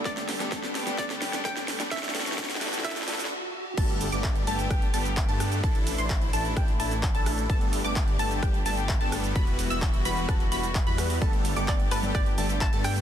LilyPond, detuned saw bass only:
\new Staff \with { instrumentName = "Detuned saw bass" } { \clef bass \time 4/4 \key g \major \tempo 4 = 129 g,,8. g,,16 g,,8. g,,16 g,,8. g,,16 g,8. g,16 | e,,8 e,,8 e,,8 e,,8 e,,8 e,,8 r4 | g,,8. g,,8. g,,8 g,,8 g,,8. g,8. | a,,8. a,,8. a,,8 a,,8 a,,8. a,,8. |
g,,8. g,,8. g,,8 g,,8 g,,8. g,,8. | e,,8. e,,8. e,,8 e,,8 e,,8. e,8. | g,,8. g,,8. g,,8 g,,8 g,,8. g,8. | }